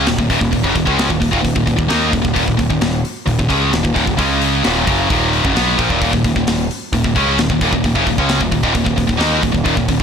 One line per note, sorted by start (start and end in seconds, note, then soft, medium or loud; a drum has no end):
0.07 0.18 D#1 medium
0.07 0.18 D#2 medium
0.07 0.18 A#2 medium
0.07 snare loud
0.07 open hi-hat medium
0.18 0.29 D#1 medium
0.18 0.29 D#2 medium
0.18 0.29 A#2 medium
0.18 kick medium
0.30 0.40 D#1 medium
0.30 0.39 D#2 medium
0.30 0.40 A#2 medium
0.30 kick medium
0.30 open hi-hat medium
0.40 0.52 D#1 medium
0.40 0.51 D#2 soft
0.40 0.50 A#2 medium
0.40 kick medium
0.52 0.64 D#1 medium
0.52 0.63 D#2 medium
0.52 0.64 A#2 medium
0.52 kick medium
0.52 open hi-hat medium
0.64 0.75 F#1 medium
0.64 0.75 F#2 medium
0.64 0.75 C#3 loud
0.64 kick medium
0.75 0.86 D#1 medium
0.75 0.87 D#2 medium
0.75 0.85 A#2 medium
0.75 kick medium
0.75 open hi-hat medium
0.85 1.09 C#2 medium
0.85 1.08 C#3 medium
0.85 1.09 G#3 loud
0.85 1.09 C#4 medium
0.85 kick medium
0.99 snare loud
0.99 open hi-hat medium
1.08 1.21 D#1 medium
1.08 1.19 D#2 medium
1.08 1.19 A#2 medium
1.08 kick medium
1.20 1.32 D#1 medium
1.20 1.30 D#2 medium
1.20 1.30 A#2 medium
1.20 kick medium
1.20 open hi-hat medium
1.31 1.44 D#1 medium
1.31 1.40 D#2 medium
1.31 1.40 A#2 medium
1.31 kick medium
1.41 1.55 D#1 medium
1.41 1.54 D#2 medium
1.41 1.54 A#2 medium
1.41 kick medium
1.41 open hi-hat medium
1.55 1.66 D#1 medium
1.55 1.64 D#2 medium
1.55 1.66 A#2 medium
1.55 kick medium
1.66 1.78 D#1 medium
1.66 1.75 D#2 medium
1.66 1.76 A#2 medium
1.66 kick medium
1.66 open hi-hat medium
1.76 1.89 D#1 medium
1.76 1.89 D#2 medium
1.76 1.88 A#2 medium
1.76 kick medium
1.88 2.11 D#2 loud
1.88 2.11 D#3 medium
1.88 2.12 A#3 medium
1.88 2.12 D#4 medium
1.88 snare loud
1.88 open hi-hat medium
2.11 2.24 D#1 medium
2.11 2.20 D#2 medium
2.11 2.20 A#2 medium
2.11 kick loud
2.11 open hi-hat medium
2.22 2.35 D#1 medium
2.22 2.32 D#2 medium
2.22 2.33 A#2 medium
2.22 kick medium
2.33 2.47 D#1 medium
2.33 2.44 D#2 medium
2.33 2.44 A#2 medium
2.33 kick medium
2.33 open hi-hat medium
2.45 2.58 D#1 medium
2.45 2.56 D#2 medium
2.45 2.56 A#2 medium
2.45 kick medium
2.57 2.70 D#1 medium
2.57 2.68 D#2 medium
2.57 2.68 A#2 medium
2.57 kick medium
2.57 open hi-hat medium
2.69 2.81 D#1 medium
2.69 2.80 D#2 medium
2.69 2.80 A#2 medium
2.69 kick medium
2.81 3.03 D#1 medium
2.81 3.00 D#2 medium
2.81 3.00 A#2 medium
2.81 snare loud
2.81 open hi-hat medium
3.05 open hi-hat medium
3.26 3.38 D#1 medium
3.26 3.38 D#2 medium
3.26 3.37 A#2 medium
3.26 kick medium
3.26 open hi-hat medium
3.39 3.50 D#1 medium
3.39 3.51 D#2 medium
3.39 3.48 A#2 medium
3.39 kick medium
3.49 3.72 C#2 medium
3.49 3.71 C#3 medium
3.49 3.72 G#3 loud
3.49 3.72 C#4 medium
3.49 kick medium
3.49 open hi-hat medium
3.72 3.84 D#1 medium
3.72 3.82 D#2 medium
3.72 3.82 A#2 medium
3.72 snare loud
3.72 open hi-hat medium
3.83 3.95 D#1 medium
3.83 3.93 D#2 medium
3.83 3.94 A#2 medium
3.83 kick medium
3.94 4.07 D#1 medium
3.94 4.05 D#2 medium
3.94 4.05 A#2 medium
3.94 kick medium
3.94 open hi-hat medium
4.06 4.18 D#1 medium
4.06 4.18 D#2 medium
4.06 4.17 A#2 medium
4.06 kick medium
4.17 4.61 C#2 medium
4.17 4.63 C#3 medium
4.17 4.63 G#3 medium
4.17 4.64 C#4 medium
4.17 kick loud
4.17 open hi-hat medium
4.41 open hi-hat medium
4.64 4.87 D#1 medium
4.64 4.86 D#2 medium
4.64 4.86 A#2 loud
4.64 4.86 D#3 loud
4.64 snare loud
4.64 open hi-hat medium
4.86 5.09 F#1 loud
4.86 5.09 F#2 medium
4.86 5.09 C#3 medium
4.86 5.09 F#3 medium
4.86 kick loud
4.86 open hi-hat medium
5.10 5.42 D#1 loud
5.10 5.44 D#2 medium
5.10 5.44 A#2 medium
5.10 5.44 D#3 loud
5.10 kick medium
5.10 open hi-hat medium
5.33 open hi-hat soft
5.44 5.55 F#1 medium
5.44 5.55 F#2 medium
5.44 5.54 C#3 medium
5.44 kick loud
5.54 5.77 B1 medium
5.54 5.76 B2 medium
5.54 5.77 F#3 medium
5.54 5.78 B3 medium
5.54 snare loud
5.54 open hi-hat medium
5.77 5.89 A#1 medium
5.77 5.89 A#2 medium
5.77 5.89 F3 medium
5.77 kick loud
5.77 open hi-hat medium
5.89 6.01 D#1 medium
5.89 6.00 D#2 medium
5.89 6.01 A#2 medium
5.89 kick medium
6.01 6.12 D#1 medium
6.01 6.11 D#2 medium
6.01 6.12 A#2 loud
6.01 kick loud
6.01 open hi-hat medium
6.12 6.24 D#1 medium
6.12 6.23 D#2 medium
6.12 6.24 A#2 medium
6.12 kick medium
6.24 6.35 D#1 medium
6.24 6.35 D#2 medium
6.24 6.36 A#2 medium
6.24 kick medium
6.24 open hi-hat medium
6.36 6.46 D#1 medium
6.36 6.47 D#2 medium
6.36 6.47 A#2 medium
6.36 kick medium
6.47 6.68 D#1 medium
6.47 6.66 D#2 medium
6.47 6.66 A#2 medium
6.47 snare loud
6.47 open hi-hat medium
6.71 open hi-hat medium
6.92 7.03 D#1 medium
6.92 7.03 D#2 medium
6.92 7.04 A#2 medium
6.92 kick medium
6.92 open hi-hat medium
7.04 7.15 D#1 medium
7.04 7.16 D#2 medium
7.04 7.15 A#2 medium
7.04 kick medium
7.15 7.37 C#2 medium
7.15 7.37 C#3 medium
7.15 7.38 G#3 medium
7.15 7.38 C#4 loud
7.15 kick medium
7.15 open hi-hat medium
7.38 7.49 D#1 medium
7.38 7.49 D#2 soft
7.38 7.50 A#2 medium
7.38 snare loud
7.38 open hi-hat medium
7.50 7.60 D#1 medium
7.50 7.60 D#2 medium
7.50 7.61 A#2 medium
7.50 kick medium
7.61 7.72 D#1 medium
7.61 7.72 D#2 medium
7.61 7.72 A#2 loud
7.61 kick medium
7.61 open hi-hat medium
7.72 7.83 D#1 medium
7.72 7.84 D#2 medium
7.72 7.85 A#2 medium
7.72 kick medium
7.84 7.95 D#1 medium
7.84 7.95 D#2 medium
7.84 7.95 A#2 medium
7.84 kick medium
7.84 open hi-hat medium
7.95 8.06 F#1 medium
7.95 8.06 F#2 medium
7.95 8.06 C#3 loud
7.95 kick medium
8.07 8.17 D#1 medium
8.07 8.19 D#2 medium
8.07 8.18 A#2 medium
8.07 kick medium
8.07 open hi-hat medium
8.18 8.39 C#2 medium
8.18 8.40 C#3 medium
8.18 8.41 G#3 medium
8.18 8.41 C#4 loud
8.18 kick medium
8.29 snare loud
8.29 open hi-hat medium
8.40 8.51 D#1 medium
8.40 8.51 D#2 medium
8.40 8.51 A#2 medium
8.40 kick medium
8.52 8.63 D#1 medium
8.52 8.62 D#2 medium
8.52 8.63 A#2 medium
8.52 kick medium
8.52 open hi-hat medium
8.63 8.74 D#1 medium
8.63 8.74 D#2 medium
8.63 8.74 A#2 medium
8.63 kick medium
8.75 8.85 D#1 medium
8.75 8.84 D#2 medium
8.75 8.85 A#2 medium
8.75 kick medium
8.75 open hi-hat medium
8.85 8.97 D#1 medium
8.85 8.96 D#2 medium
8.85 8.95 A#2 medium
8.85 kick medium
8.96 9.08 D#1 medium
8.96 9.06 D#2 medium
8.96 9.06 A#2 medium
8.96 kick medium
8.96 open hi-hat medium
9.07 9.19 D#1 medium
9.07 9.19 D#2 medium
9.07 9.17 A#2 medium
9.07 kick medium
9.17 9.41 D#2 loud
9.17 9.41 D#3 medium
9.17 9.41 A#3 medium
9.17 9.41 D#4 medium
9.17 snare loud
9.17 open hi-hat medium
9.42 9.54 D#1 medium
9.42 9.51 D#2 medium
9.42 9.52 A#2 medium
9.42 kick medium
9.42 open hi-hat medium
9.52 9.65 D#1 medium
9.52 9.63 D#2 medium
9.52 9.64 A#2 medium
9.52 kick medium
9.65 9.76 D#1 medium
9.65 9.75 D#2 medium
9.65 9.75 A#2 loud
9.65 kick loud
9.65 open hi-hat medium
9.77 9.88 D#1 medium
9.77 9.88 D#2 medium
9.77 9.88 A#2 medium
9.77 kick medium
9.88 9.99 D#1 medium
9.88 10.00 D#2 medium
9.88 10.00 A#2 medium
9.88 kick medium
9.88 open hi-hat medium
10.00 10.03 D#1 medium
10.00 kick medium